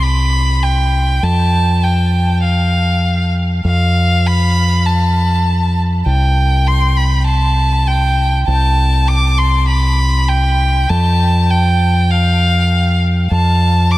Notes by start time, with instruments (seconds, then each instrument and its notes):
Already playing: fingered electric bass C2
0.03 violin B5
0.63 violin G5
1.23 fingered electric bass F2, violin A5
1.83 violin G5
2.44 violin F5
3.65 fingered electric bass F2, violin F5
4.26 violin B5
4.86 violin A5
6.06 fingered electric bass C2, violin G5
6.67 violin C6
6.96 violin B5
7.26 violin A5
7.87 violin G5
8.48 fingered electric bass C2, violin A5
9.08 violin D6
9.38 violin C6
9.69 violin B5
10.28 violin G5
10.89 fingered electric bass F2, violin A5
11.51 violin G5
12.11 violin F5
13.31 fingered electric bass F2, violin A5
13.91 violin D6